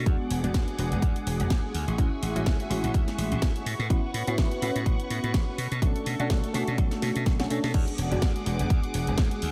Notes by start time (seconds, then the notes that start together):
0.06 E2 G#3 B3 D4 F#4 G#4 F#5 D6, kick, closed hi-hat
0.30 E1, open hi-hat
0.43 E1 G#3 B3 D4 F#4, closed hi-hat
0.54 E2, kick, snare, closed hi-hat
0.68 closed hi-hat
0.78 E1 G#3 B3 D4 F#4, open hi-hat
0.91 E1, closed hi-hat
1.02 E2, kick, closed hi-hat
1.16 closed hi-hat
1.26 E1, open hi-hat
1.40 E1, closed hi-hat
1.50 E2, kick, snare, closed hi-hat
1.74 D2 E5 F#5 C#6, open hi-hat
1.87 A1, closed hi-hat
1.98 G#3 C#4 E4 F#4, kick, closed hi-hat
2.22 A1, open hi-hat
2.35 A1 G#3 C#4 E4 F#4, closed hi-hat
2.46 kick, snare, closed hi-hat
2.60 closed hi-hat
2.70 A1 G#3 C#4 E4 F#4, open hi-hat
2.83 A1, closed hi-hat
2.94 D2, kick, closed hi-hat
3.08 snare, closed hi-hat
3.18 A1, open hi-hat
3.31 A1, closed hi-hat
3.42 D2, kick, snare, closed hi-hat
3.56 closed hi-hat
3.66 A2 B4 F#5, open hi-hat
3.79 A2, open hi-hat
3.90 A1 B3 C#4 E4 F#4, kick, closed hi-hat
4.14 A2, open hi-hat
4.27 A2 B3 C#4 E4 F#4, closed hi-hat
4.38 A1, kick, snare, closed hi-hat
4.51 closed hi-hat
4.62 A2 B3 C#4 E4 F#4, open hi-hat
4.75 A2, closed hi-hat
4.86 A1, kick, closed hi-hat
5.00 closed hi-hat
5.10 A2, open hi-hat
5.23 A2, closed hi-hat
5.34 A1, kick, snare, closed hi-hat
5.58 B2 A4, open hi-hat
5.71 B2, closed hi-hat
5.82 B1 A3 C#4 D4 F#4, kick, closed hi-hat
5.96 closed hi-hat
6.06 B2, open hi-hat
6.19 B2 A3 C#4 D4 F#4, closed hi-hat
6.30 B1, kick, snare, closed hi-hat
6.44 closed hi-hat
6.53 B2 A3 C#4 D4 F#4, snare, open hi-hat
6.68 B2, closed hi-hat
6.78 B1, kick, closed hi-hat
6.91 snare, closed hi-hat
7.02 B2, snare, open hi-hat
7.16 B2, closed hi-hat
7.26 B1, kick, snare, closed hi-hat
7.39 A3 C#4 D4 F#4, snare, closed hi-hat
7.50 B2 A3 C#4 D4 A4, open hi-hat
7.63 B2, snare, open hi-hat
7.74 E2 G#3 B3 D4 F#4 G#4 F#5 D6, kick, closed hi-hat, crash
7.88 closed hi-hat
7.98 E1, open hi-hat
8.11 E1 G#3 B3 D4 F#4, closed hi-hat
8.22 E2, kick, snare, closed hi-hat
8.36 closed hi-hat
8.45 E1 G#3 B3 D4 F#4, open hi-hat
8.59 E1, closed hi-hat
8.70 kick, closed hi-hat
8.84 closed hi-hat
8.94 E1, open hi-hat
9.07 E1, closed hi-hat
9.18 E2, kick, snare, closed hi-hat
9.31 closed hi-hat
9.42 D2 E5 C#6, open hi-hat